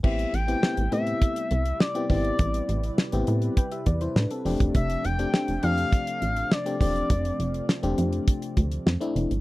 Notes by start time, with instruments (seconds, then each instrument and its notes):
0.03 analog synth bass A1, analog synth pad C3 G3 A3 E4, fm electric piano B3 C4 E4 G4, analog synth lead E5, kick, crash
0.19 closed hi-hat
0.33 analog synth bass A1, analog synth lead G5, closed hi-hat
0.48 fm electric piano B3 C4 E4 G4, closed hi-hat
0.62 fm electric piano B3 C4 E4 G4, snare
0.77 analog synth bass A1, closed hi-hat
0.91 analog synth bass A2, fm electric piano B3 C4 E4 G4, analog synth lead E5, closed hi-hat
1.07 closed hi-hat
1.22 kick, closed hi-hat
1.36 closed hi-hat
1.51 analog synth bass C2, closed hi-hat
1.66 closed hi-hat
1.80 analog synth lead D5, snare
1.95 fm electric piano B3 C4 E4 G4, closed hi-hat
2.10 analog synth bass G#1, fm electric piano B3 C4 E4 G4, analog synth lead D5, kick, open hi-hat
2.25 closed hi-hat
2.39 analog synth bass A1, analog synth pad B4, kick, closed hi-hat
2.54 closed hi-hat
2.69 analog synth bass A1, closed hi-hat
2.83 closed hi-hat
2.98 snare
3.12 analog synth bass A1, fm electric piano B3 C4 E4 G4, closed hi-hat
3.27 analog synth bass A2, closed hi-hat
3.42 closed hi-hat
3.57 fm electric piano B4 G5, kick, closed hi-hat
3.72 fm electric piano G4 E5, closed hi-hat
3.86 analog synth bass E2, fm electric piano D5, kick, closed hi-hat
4.01 fm electric piano E4 C5, closed hi-hat
4.16 analog synth bass A2, fm electric piano D4 B4, snare
4.31 fm electric piano C4 A4, closed hi-hat
4.45 analog synth bass F1, analog synth pad F3 A3 D4, fm electric piano A3 C4 D4 G4, open hi-hat
4.60 analog synth bass E1, kick, closed hi-hat
4.75 analog synth bass F1, analog synth lead E5, kick, closed hi-hat
4.90 closed hi-hat
5.05 analog synth bass F1, analog synth lead G5, closed hi-hat
5.19 fm electric piano A3 C4 D4 G4, closed hi-hat
5.33 fm electric piano A3 C4 D4 G4, snare
5.48 analog synth bass F1, closed hi-hat
5.63 analog synth bass F2, fm electric piano A3 C4 D4 G4, analog synth lead F5, closed hi-hat
5.78 closed hi-hat
5.93 kick, closed hi-hat
6.07 closed hi-hat
6.22 analog synth bass A1, closed hi-hat
6.37 closed hi-hat
6.52 analog synth lead D5, snare
6.65 fm electric piano A3 C4 D4 G4, closed hi-hat
6.80 analog synth bass E1, fm electric piano A3 C4 D4 G4, analog synth pad C4, analog synth lead D5, kick, open hi-hat
6.96 closed hi-hat
7.10 analog synth bass F1, kick, closed hi-hat
7.25 closed hi-hat
7.39 analog synth bass F1, closed hi-hat
7.54 closed hi-hat
7.69 snare
7.83 analog synth bass F1, fm electric piano A3 C4 D4 G4, closed hi-hat
7.98 analog synth bass F2, closed hi-hat
8.13 closed hi-hat
8.28 kick, closed hi-hat
8.42 closed hi-hat
8.57 analog synth bass D2, kick, closed hi-hat
8.72 closed hi-hat
8.86 analog synth bass F2, snare
9.01 fm electric piano A3 C4 D4 E4, closed hi-hat
9.16 analog synth bass F1, closed hi-hat
9.31 analog synth bass G#1, closed hi-hat